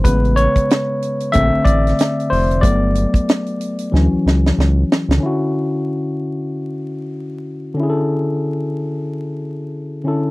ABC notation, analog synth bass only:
X:1
M:4/4
L:1/16
Q:"Swing 16ths" 1/4=93
K:D
V:1 name="Analog synth bass" clef=bass
A,,,3 _B,,, z4 B,,, A,,, A,,,2 z2 =F,,,2 | G,,,3 D,, z4 D,, C,, C,,2 C,,2 z C,, | z16 | z16 |]